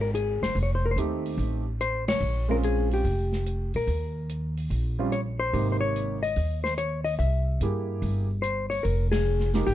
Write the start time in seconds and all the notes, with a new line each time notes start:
Already playing: G#1
0.01 A#4
0.15 G#4, closed hi-hat
0.42 F#1 C5, snare
0.55 F1, open hi-hat
0.63 C#5
0.75 C5
0.86 A#4
0.91 C5
0.96 D#2 A3 C4 D#4 G4, closed hi-hat
1.26 open hi-hat
1.38 A1, open hi-hat
1.81 C5, closed hi-hat
2.08 C#5, snare, ride
2.20 A#1
2.48 G#3 C4 C#4 F4 A#4
2.63 G#4, closed hi-hat
2.91 G4, open hi-hat
3.04 F1, open hi-hat
3.32 snare
3.46 closed hi-hat
3.74 A#2 A#4, open hi-hat
3.87 D#2, open hi-hat
4.29 closed hi-hat
4.57 open hi-hat
4.70 A#1, open hi-hat
4.99 G3 C4 C#4 F4
5.12 C#5, closed hi-hat
5.40 C5
5.53 G#1 C3 A#3 D#4 G4, open hi-hat
5.72 C5
5.81 C#5
5.96 closed hi-hat
6.23 D#5, open hi-hat
6.36 D#2, open hi-hat
6.64 C5, snare
6.78 C#5, closed hi-hat
7.04 D#5, open hi-hat
7.19 C2 E5, open hi-hat
7.61 G2 A#3 E4 G4 G#4, closed hi-hat
8.02 G1, open hi-hat
8.42 C5, closed hi-hat
8.70 C#5, open hi-hat
8.83 F1 A#4, open hi-hat
9.12 G#4, snare, ride
9.40 snare
9.54 G#3 A#3 D#4 G4, snare, open hi-hat
9.67 G#1 G4, open hi-hat